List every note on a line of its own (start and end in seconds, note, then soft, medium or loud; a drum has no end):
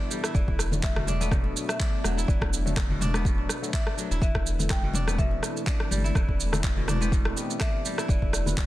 0.00 0.40 B2 medium
0.00 0.33 E3 medium
0.00 0.33 G3 medium
0.00 0.33 B3 medium
0.00 1.13 B3 loud
0.00 0.33 D4 medium
0.00 1.07 D4 loud
0.00 0.31 E4 medium
0.00 0.33 E4 medium
0.00 2.24 A4 medium
0.00 0.31 D5 medium
0.00 4.18 E5 medium
0.11 0.40 G3 medium
0.11 shaker loud
0.24 1.81 E4 loud
0.24 cross-stick loud
0.24 shaker medium
0.34 1.53 E1 loud
0.34 1.00 E3 medium
0.34 4.18 D4 medium
0.34 0.85 D5 medium
0.34 kick loud
0.34 muted conga soft
0.34 shaker soft
0.48 kick medium
0.59 cross-stick medium
0.59 shaker loud
0.72 1.17 F#3 medium
0.72 1.17 A3 medium
0.72 1.17 D4 medium
0.72 1.17 F#4 medium
0.72 1.17 A4 medium
0.72 muted conga soft
0.72 high conga medium
0.72 low conga medium
0.72 shaker medium
0.83 1.33 E5 medium
0.83 kick loud
0.83 clap loud
0.83 high conga medium
0.83 shaker soft
0.96 1.31 B2 medium
0.96 cross-stick loud
0.96 low conga medium
1.07 1.80 D4 loud
1.07 mid tom medium
1.07 muted conga medium
1.07 high conga loud
1.07 shaker medium
1.20 1.28 F#3 medium
1.20 1.28 A3 medium
1.20 3.07 B3 loud
1.20 1.28 D4 medium
1.20 1.28 F#4 medium
1.20 1.28 A4 loud
1.20 high conga loud
1.20 shaker medium
1.31 2.89 B2 medium
1.31 1.66 D5 medium
1.31 kick loud
1.31 cross-stick medium
1.31 mid tom medium
1.31 shaker soft
1.44 muted conga soft
1.57 shaker loud
1.69 2.05 E5 medium
1.69 cross-stick loud
1.69 shaker medium
1.80 3.01 D4 loud
1.80 kick loud
1.80 clap loud
1.80 muted conga soft
1.80 shaker soft
2.04 2.25 E1 medium
2.04 3.97 F#3 medium
2.04 2.26 F#5 loud
2.04 cross-stick medium
2.04 high conga loud
2.04 shaker loud
2.18 3.74 E4 loud
2.18 shaker medium
2.28 3.46 E1 loud
2.28 4.20 B4 medium
2.28 3.69 D5 loud
2.28 kick loud
2.28 muted conga medium
2.28 shaker soft
2.41 kick medium
2.41 cross-stick medium
2.53 shaker medium
2.66 3.11 F#3 medium
2.66 3.11 A3 medium
2.66 3.11 D4 medium
2.66 3.11 F#4 medium
2.66 3.11 A4 loud
2.66 muted conga soft
2.66 high conga medium
2.66 low conga medium
2.66 shaker medium
2.77 kick loud
2.77 cross-stick medium
2.77 clap loud
2.77 shaker soft
2.90 3.25 B2 medium
2.90 low conga medium
3.01 3.73 D4 loud
3.01 mid tom medium
3.01 muted conga soft
3.01 high conga loud
3.01 shaker medium
3.14 3.46 F#3 medium
3.14 3.46 A3 medium
3.14 5.01 B3 loud
3.14 3.46 D4 medium
3.14 3.46 F#4 medium
3.14 3.46 D5 loud
3.14 cross-stick medium
3.14 high conga loud
3.14 shaker medium
3.25 4.27 B2 medium
3.25 kick loud
3.25 shaker soft
3.38 muted conga soft
3.49 cross-stick medium
3.49 shaker loud
3.62 3.70 F#3 medium
3.62 3.70 A3 medium
3.62 3.70 D4 medium
3.62 3.70 F#4 medium
3.62 3.70 A4 loud
3.62 shaker medium
3.73 4.94 D4 loud
3.73 4.21 E5 medium
3.73 kick loud
3.73 clap loud
3.73 muted conga medium
3.73 shaker soft
3.87 cross-stick medium
3.97 4.07 F#3 medium
3.97 4.27 F#3 medium
3.97 4.07 A3 medium
3.97 4.07 D4 medium
3.97 4.07 F#4 medium
3.97 4.07 A4 medium
3.97 shaker loud
4.11 4.20 E1 loud
4.11 5.68 E4 loud
4.11 shaker medium
4.21 5.40 E1 loud
4.21 4.87 E3 medium
4.21 8.05 A3 medium
4.21 8.05 E4 medium
4.21 8.66 A4 medium
4.21 4.72 E5 loud
4.21 kick loud
4.21 muted conga soft
4.21 shaker soft
4.35 kick medium
4.35 cross-stick medium
4.47 shaker medium
4.59 5.04 E3 medium
4.59 5.04 A3 medium
4.59 5.04 C4 medium
4.59 5.04 E4 medium
4.59 5.04 A4 medium
4.59 muted conga soft
4.59 high conga medium
4.59 low conga medium
4.59 shaker medium
4.70 5.20 G5 loud
4.70 kick loud
4.70 cross-stick medium
4.70 clap medium
4.70 shaker soft
4.82 5.17 B2 medium
4.82 low conga medium
4.93 5.67 D4 loud
4.93 mid tom medium
4.93 muted conga soft
4.93 high conga medium
4.93 shaker medium
5.07 5.15 E3 medium
5.07 5.15 A3 medium
5.07 6.94 B3 loud
5.07 5.15 C4 medium
5.07 5.15 E4 medium
5.07 5.15 A4 loud
5.07 cross-stick medium
5.07 high conga loud
5.07 shaker medium
5.18 6.76 B2 medium
5.18 6.50 E3 medium
5.18 6.50 A3 medium
5.18 6.50 C4 medium
5.18 6.50 E4 medium
5.18 6.50 A4 medium
5.18 5.64 E5 loud
5.18 kick loud
5.18 mid tom medium
5.18 shaker soft
5.31 muted conga soft
5.43 cross-stick medium
5.43 shaker medium
5.57 shaker medium
5.67 6.88 D4 loud
5.67 5.90 D5 medium
5.67 kick loud
5.67 clap loud
5.67 muted conga soft
5.67 shaker soft
5.80 cross-stick medium
5.91 6.12 G1 medium
5.91 7.84 G3 medium
5.91 6.36 D5 medium
5.91 high conga loud
5.91 shaker medium
6.04 7.61 E4 loud
6.04 shaker medium
6.15 7.33 E1 loud
6.15 6.81 E3 medium
6.15 kick loud
6.15 cross-stick medium
6.15 muted conga medium
6.15 shaker soft
6.29 kick medium
6.40 shaker medium
6.52 6.98 E3 medium
6.52 6.98 A3 medium
6.52 6.98 C4 medium
6.52 6.98 E4 medium
6.52 6.98 A4 loud
6.52 cross-stick medium
6.52 muted conga soft
6.52 high conga medium
6.52 low conga medium
6.52 shaker medium
6.64 kick loud
6.64 clap loud
6.64 shaker soft
6.77 7.12 B2 medium
6.77 low conga medium
6.88 7.60 D4 loud
6.88 cross-stick medium
6.88 mid tom medium
6.88 muted conga medium
6.88 high conga loud
6.88 shaker medium
7.01 7.34 E3 medium
7.01 7.34 A3 medium
7.01 8.66 B3 loud
7.01 7.34 C4 medium
7.01 7.34 E4 medium
7.01 7.34 C5 loud
7.01 high conga loud
7.01 shaker medium
7.12 8.14 B2 medium
7.12 kick loud
7.12 shaker soft
7.25 cross-stick medium
7.25 muted conga soft
7.36 8.07 E3 medium
7.36 8.07 A3 medium
7.36 8.07 C4 medium
7.36 8.07 E4 medium
7.36 8.07 G4 medium
7.36 shaker medium
7.50 shaker medium
7.60 8.66 D4 loud
7.60 8.10 E5 loud
7.60 kick loud
7.60 cross-stick medium
7.60 clap loud
7.60 muted conga medium
7.60 shaker soft
7.86 8.14 G3 medium
7.86 shaker medium
7.98 8.66 E4 loud
7.98 cross-stick medium
7.98 shaker medium
8.08 8.66 E1 loud
8.08 8.66 E3 medium
8.08 8.66 B3 medium
8.08 8.66 F#4 medium
8.08 8.31 D5 loud
8.08 kick loud
8.08 muted conga medium
8.08 shaker soft
8.22 kick medium
8.33 8.66 D5 loud
8.33 cross-stick medium
8.33 shaker medium
8.45 8.66 F#3 medium
8.45 8.66 B3 medium
8.45 8.66 E4 medium
8.45 8.66 F#4 medium
8.45 8.66 B4 medium
8.45 muted conga soft
8.45 high conga medium
8.45 low conga medium
8.45 shaker soft
8.57 kick loud
8.57 clap loud
8.57 high conga medium
8.57 shaker soft